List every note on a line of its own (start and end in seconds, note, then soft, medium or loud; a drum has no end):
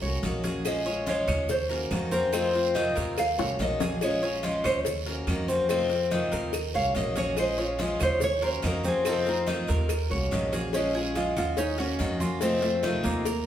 0.02 0.22 C2 medium
0.02 0.23 A#3 soft
0.02 0.23 C#4 soft
0.02 0.22 F#4 medium
0.02 0.43 C#5 medium
0.02 high conga soft
0.02 maracas soft
0.23 1.22 A#1 medium
0.23 0.43 D#3 medium
0.23 0.44 A#3 medium
0.23 0.44 C#4 medium
0.23 0.43 F#4 medium
0.23 cowbell medium
0.23 high conga medium
0.23 short guiro medium
0.23 maracas soft
0.44 0.65 A#3 soft
0.44 0.65 C#4 soft
0.44 0.64 F#4 medium
0.44 0.85 G#4 medium
0.44 cowbell medium
0.44 high conga medium
0.44 short guiro medium
0.44 maracas medium
0.65 0.85 F3 medium
0.65 0.86 G#3 medium
0.65 0.86 C#4 medium
0.65 0.85 F4 loud
0.65 1.05 D#5 medium
0.65 cowbell loud
0.65 high conga soft
0.65 long guiro medium
0.65 claves medium
0.65 maracas medium
0.86 1.06 G#3 soft
0.86 1.06 C#4 loud
0.86 1.07 C#4 soft
0.86 1.06 F4 medium
0.86 high conga soft
0.86 maracas soft
1.06 1.48 F3 medium
1.06 1.48 G#3 medium
1.06 1.49 C#4 medium
1.06 1.27 F4 medium
1.06 1.49 F4 medium
1.06 1.47 C#5 medium
1.06 cowbell medium
1.06 high conga medium
1.06 short guiro medium
1.06 maracas soft
1.28 1.87 D#2 loud
1.28 1.69 C#5 medium
1.28 cowbell medium
1.28 low conga medium
1.28 short guiro medium
1.28 claves medium
1.28 maracas medium
1.49 2.09 C5 medium
1.49 muted steel-string acoustic guitar stroke medium
1.49 cowbell loud
1.49 high conga soft
1.49 low conga medium
1.49 long guiro medium
1.49 maracas medium
1.69 1.90 A#3 soft
1.69 1.91 C#4 soft
1.69 1.90 F#4 medium
1.69 2.11 A#4 medium
1.69 cowbell medium
1.69 high conga soft
1.69 maracas soft
1.91 2.90 F2 loud
1.91 2.11 D#3 medium
1.91 2.11 A#3 medium
1.91 2.12 C#4 medium
1.91 2.10 F#4 medium
1.91 cowbell medium
1.91 high conga medium
1.91 short guiro medium
1.91 claves medium
1.91 maracas soft
2.11 2.33 A#3 soft
2.11 2.31 C4 medium
2.11 2.33 C#4 soft
2.11 2.32 F#4 soft
2.11 2.33 A#4 loud
2.11 high conga medium
2.11 short guiro medium
2.11 maracas medium
2.32 2.53 C3 medium
2.32 2.53 D#3 medium
2.32 2.54 A3 medium
2.32 2.74 C4 medium
2.32 2.54 C4 medium
2.32 2.53 F4 medium
2.32 cowbell loud
2.32 high conga soft
2.32 long guiro medium
2.32 claves medium
2.32 maracas loud
2.54 2.74 A3 soft
2.54 2.75 C4 soft
2.54 2.74 F4 medium
2.54 cowbell medium
2.54 high conga soft
2.54 maracas soft
2.75 3.16 C3 medium
2.75 3.16 D#3 medium
2.75 3.17 A3 medium
2.75 3.17 C4 medium
2.75 2.96 D#4 medium
2.75 3.17 F4 medium
2.75 cowbell medium
2.75 high conga medium
2.75 short guiro medium
2.75 maracas soft
2.95 3.36 D#2 medium
2.95 3.37 A#4 medium
2.95 cowbell medium
2.95 high conga soft
2.95 short guiro medium
2.95 maracas medium
3.17 3.57 F5 loud
3.17 muted steel-string acoustic guitar stroke medium
3.17 cowbell loud
3.17 high conga soft
3.17 long guiro medium
3.17 claves medium
3.17 maracas medium
3.38 3.58 C2 medium
3.38 3.59 A#3 soft
3.38 3.59 C#4 soft
3.38 3.58 F#4 medium
3.38 3.79 C#5 medium
3.38 high bongo medium
3.38 high conga soft
3.38 maracas soft
3.59 4.58 A#1 medium
3.59 3.79 D#3 medium
3.59 3.80 A#3 medium
3.59 3.80 C#4 medium
3.59 3.79 F#4 medium
3.59 4.00 D#5 medium
3.59 cowbell medium
3.59 high conga medium
3.59 short guiro medium
3.59 maracas soft
3.80 4.01 A#3 soft
3.80 4.01 C#4 soft
3.80 4.00 F#4 medium
3.80 4.21 G#4 medium
3.80 cowbell medium
3.80 low bongo loud
3.80 high conga medium
3.80 short guiro medium
3.80 maracas medium
4.01 4.22 F3 medium
4.01 4.22 G#3 medium
4.01 4.22 C#4 medium
4.01 4.21 F4 medium
4.01 4.61 C#5 medium
4.01 cowbell loud
4.01 high conga soft
4.01 long guiro medium
4.01 claves medium
4.01 maracas loud
4.22 4.43 G#3 soft
4.22 4.43 C#4 medium
4.22 4.43 C#4 soft
4.22 4.42 F4 medium
4.22 high conga soft
4.22 maracas soft
4.43 4.84 F3 medium
4.43 4.85 G#3 medium
4.43 4.85 C#4 medium
4.43 4.64 F4 medium
4.43 4.86 F4 medium
4.43 cowbell medium
4.43 high conga medium
4.43 short guiro medium
4.43 maracas soft
4.64 5.24 D#2 loud
4.64 4.78 C5 loud
4.64 5.05 C#5 medium
4.64 cowbell medium
4.64 low conga medium
4.64 short guiro medium
4.64 claves medium
4.64 maracas medium
4.85 muted steel-string acoustic guitar stroke medium
4.85 cowbell loud
4.85 high conga soft
4.85 low conga medium
4.85 long guiro medium
4.85 maracas medium
5.06 5.28 A#3 soft
5.06 5.28 C#4 soft
5.06 5.27 F#4 medium
5.06 5.47 A#4 medium
5.06 cowbell medium
5.06 high conga soft
5.06 maracas soft
5.27 6.26 F2 loud
5.27 5.48 D#3 medium
5.27 5.48 A#3 medium
5.27 5.49 C#4 medium
5.27 5.47 F#4 medium
5.27 cowbell medium
5.27 high conga medium
5.27 short guiro medium
5.27 claves medium
5.27 maracas soft
5.48 5.70 A#3 soft
5.48 5.68 C4 medium
5.48 5.69 C#4 soft
5.48 5.69 F#4 soft
5.48 high conga medium
5.48 short guiro medium
5.48 maracas medium
5.69 5.90 C3 medium
5.69 5.90 D#3 medium
5.69 5.90 A3 medium
5.69 6.10 C4 medium
5.69 5.90 C4 medium
5.69 5.89 F4 medium
5.69 cowbell loud
5.69 high conga soft
5.69 long guiro medium
5.69 claves medium
5.69 maracas loud
5.90 6.11 A3 soft
5.90 6.11 F4 medium
5.90 cowbell medium
5.90 high conga soft
5.90 maracas soft
6.11 6.53 C3 medium
6.11 6.52 D#3 medium
6.11 6.53 A3 medium
6.11 6.54 C4 medium
6.11 6.32 D#4 medium
6.11 6.54 F4 medium
6.11 cowbell medium
6.11 high conga loud
6.11 short guiro medium
6.11 maracas soft
6.32 6.72 D#2 loud
6.32 6.73 A#4 medium
6.32 cowbell medium
6.32 high conga soft
6.32 short guiro medium
6.32 maracas medium
6.53 muted steel-string acoustic guitar stroke medium
6.53 cowbell loud
6.53 high conga soft
6.53 long guiro medium
6.53 claves medium
6.53 maracas medium
6.74 6.94 C2 medium
6.74 6.95 A#3 soft
6.74 6.95 C#4 soft
6.74 6.95 F#4 medium
6.74 7.15 C#5 medium
6.74 6.95 F5 loud
6.74 high conga soft
6.74 maracas soft
6.95 7.95 A#1 medium
6.95 7.16 D#3 medium
6.95 7.16 A#3 medium
6.95 7.16 C#4 medium
6.95 7.15 F#4 medium
6.95 7.16 D#5 medium
6.95 cowbell medium
6.95 high conga medium
6.95 short guiro medium
6.95 maracas soft
7.16 7.38 A#3 soft
7.16 7.37 C#4 medium
7.16 7.37 F#4 medium
7.16 7.57 G#4 medium
7.16 7.38 C#5 medium
7.16 cowbell medium
7.16 high conga medium
7.16 short guiro medium
7.16 maracas medium
7.37 7.58 F3 medium
7.37 7.58 G#3 medium
7.37 7.58 C#4 medium
7.37 7.57 F4 medium
7.37 7.59 C5 medium
7.37 cowbell loud
7.37 high conga soft
7.37 long guiro medium
7.37 claves medium
7.37 maracas medium
7.58 7.79 G#3 soft
7.58 7.79 C#4 medium
7.58 7.78 F4 medium
7.58 7.80 F4 medium
7.58 high conga soft
7.58 maracas soft
7.79 8.21 F3 medium
7.79 8.21 G#3 medium
7.79 8.21 C#4 medium
7.79 8.00 F4 medium
7.79 8.21 F4 medium
7.79 cowbell medium
7.79 high conga loud
7.79 short guiro medium
7.79 maracas soft
7.83 8.02 G#4 medium
8.00 8.60 D#2 loud
8.00 8.22 C5 loud
8.00 8.41 C#5 medium
8.00 cowbell medium
8.00 low conga medium
8.00 short guiro medium
8.00 claves medium
8.00 maracas medium
8.20 8.45 C#5 loud
8.20 muted steel-string acoustic guitar stroke medium
8.20 cowbell loud
8.20 high conga soft
8.20 low conga medium
8.20 long guiro medium
8.20 maracas medium
8.42 8.62 A#3 soft
8.42 8.63 C#4 soft
8.42 8.62 F#4 medium
8.42 8.83 A#4 medium
8.42 8.64 C5 loud
8.42 cowbell medium
8.42 high conga soft
8.42 maracas soft
8.62 9.63 F2 medium
8.62 8.83 D#3 medium
8.62 8.84 A#3 medium
8.62 8.84 C#4 medium
8.62 8.83 F#4 medium
8.62 cowbell medium
8.62 high conga medium
8.62 short guiro medium
8.62 claves medium
8.62 maracas soft
8.67 8.86 A#4 medium
8.84 9.05 A#3 soft
8.84 9.04 C4 medium
8.84 9.05 C#4 soft
8.84 9.04 F#4 medium
8.84 high conga medium
8.84 short guiro medium
8.84 maracas medium
8.88 9.09 G#4 medium
9.05 9.26 C3 medium
9.05 9.26 D#3 medium
9.05 9.26 A3 medium
9.05 9.46 C4 medium
9.05 9.26 C4 medium
9.05 9.25 F4 medium
9.05 9.28 A4 loud
9.05 cowbell loud
9.05 high conga soft
9.05 long guiro medium
9.05 claves medium
9.05 maracas loud
9.26 9.46 A3 soft
9.26 9.47 C4 soft
9.26 9.41 D#4 loud
9.26 9.46 F4 medium
9.26 cowbell medium
9.26 maracas soft
9.46 9.88 C3 medium
9.46 9.88 D#3 medium
9.46 9.89 A3 medium
9.46 9.89 C4 medium
9.46 9.68 D#4 medium
9.46 9.89 F4 medium
9.46 cowbell medium
9.46 high conga medium
9.46 short guiro medium
9.46 maracas soft
9.68 10.08 D#2 loud
9.68 10.09 A#4 medium
9.68 cowbell medium
9.68 short guiro medium
9.68 maracas medium
9.89 muted steel-string acoustic guitar stroke medium
9.89 cowbell loud
9.89 high conga soft
9.89 long guiro medium
9.89 claves medium
9.89 maracas medium
10.10 10.30 C2 medium
10.10 10.31 A#3 soft
10.10 10.31 C#4 soft
10.10 10.31 F#4 medium
10.10 10.52 C#5 medium
10.10 high conga soft
10.10 maracas soft
10.31 11.31 A#1 loud
10.31 10.52 D#3 medium
10.31 10.52 A#3 medium
10.31 10.52 C#4 medium
10.31 10.51 F#4 medium
10.31 cowbell medium
10.31 high conga medium
10.31 short guiro medium
10.31 maracas soft
10.52 10.74 A#3 soft
10.52 10.73 C#4 soft
10.52 10.73 F#4 medium
10.52 10.73 G#4 medium
10.52 cowbell medium
10.52 high conga medium
10.52 short guiro medium
10.52 maracas medium
10.73 10.94 F3 medium
10.73 10.94 G#3 medium
10.73 10.94 C#4 medium
10.73 11.18 C#4 loud
10.73 10.95 C#4 medium
10.73 10.94 F4 medium
10.73 cowbell loud
10.73 high conga soft
10.73 long guiro medium
10.73 maracas loud
10.95 11.14 G#3 soft
10.95 11.15 C#4 medium
10.95 11.15 F4 medium
10.95 11.35 G#4 medium
10.95 high conga soft
10.95 maracas soft
11.15 11.57 F3 medium
11.15 11.57 G#3 medium
11.15 11.57 C#4 medium
11.15 11.36 F4 medium
11.15 11.58 F4 medium
11.15 cowbell medium
11.15 high conga loud
11.15 short guiro medium
11.15 maracas soft
11.36 11.96 D#2 medium
11.36 11.59 F4 medium
11.36 11.57 F#4 medium
11.36 cowbell medium
11.36 low conga medium
11.36 short guiro medium
11.36 maracas medium
11.57 11.78 C#4 medium
11.57 11.78 D#4 loud
11.57 muted steel-string acoustic guitar stroke medium
11.57 cowbell loud
11.57 high conga soft
11.57 long guiro medium
11.57 maracas medium
11.78 11.99 A#3 soft
11.78 11.99 C#4 soft
11.78 12.42 C#4 loud
11.78 12.19 F#4 medium
11.78 11.99 F#4 soft
11.78 cowbell medium
11.78 high conga soft
11.78 maracas soft
11.99 12.99 F2 loud
11.99 12.19 D#3 medium
11.99 12.20 A#3 medium
11.99 12.20 C#4 medium
11.99 12.19 F#4 medium
11.99 cowbell medium
11.99 high conga medium
11.99 short guiro medium
11.99 maracas soft
12.20 12.42 A#3 soft
12.20 12.41 C#4 soft
12.20 12.41 F4 medium
12.20 12.40 F#4 medium
12.20 high conga medium
12.20 short guiro medium
12.20 maracas medium
12.41 12.62 C3 medium
12.41 12.62 D#3 medium
12.41 12.62 A3 medium
12.41 12.61 A3 loud
12.41 12.82 C4 medium
12.41 12.62 C4 medium
12.41 12.62 F4 medium
12.41 cowbell loud
12.41 high conga soft
12.41 long guiro medium
12.41 maracas medium
12.62 13.03 A3 medium
12.62 12.83 A3 soft
12.62 12.83 C4 soft
12.62 12.83 F4 medium
12.62 cowbell medium
12.62 maracas soft
12.83 13.24 C3 medium
12.83 13.24 D#3 medium
12.83 13.25 A3 medium
12.83 13.25 C4 medium
12.83 13.24 D#4 medium
12.83 13.26 F4 medium
12.83 cowbell medium
12.83 high conga loud
12.83 short guiro medium
12.83 maracas soft
13.04 13.44 D#2 loud
13.04 13.46 A#3 loud
13.04 cowbell medium
13.04 high conga soft
13.04 short guiro medium
13.04 maracas medium
13.25 13.46 A#4 medium
13.25 muted steel-string acoustic guitar stroke medium
13.25 cowbell loud
13.25 high conga soft
13.25 long guiro medium
13.25 maracas medium